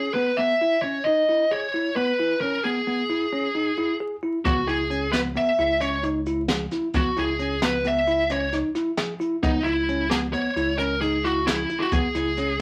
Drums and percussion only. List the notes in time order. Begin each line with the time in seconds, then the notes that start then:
4.45 kick, closed hi-hat
4.68 closed hi-hat
4.91 closed hi-hat
5.13 snare, closed hi-hat
5.36 closed hi-hat
5.59 closed hi-hat
5.81 closed hi-hat
6.04 closed hi-hat
6.26 closed hi-hat
6.48 snare, closed hi-hat
6.71 snare, closed hi-hat
6.94 kick, closed hi-hat
7.17 closed hi-hat
7.39 closed hi-hat
7.62 snare, closed hi-hat
7.84 closed hi-hat
8.07 closed hi-hat
8.30 closed hi-hat
8.53 snare, closed hi-hat
8.75 snare, closed hi-hat
8.97 snare, closed hi-hat
9.21 closed hi-hat
9.43 kick, closed hi-hat
9.66 closed hi-hat
9.89 closed hi-hat
10.11 snare, closed hi-hat
10.34 closed hi-hat
10.57 closed hi-hat
10.79 closed hi-hat
11.02 closed hi-hat
11.25 closed hi-hat
11.47 snare, closed hi-hat
11.69 closed hi-hat
11.92 kick, closed hi-hat
12.15 snare, closed hi-hat
12.37 snare, closed hi-hat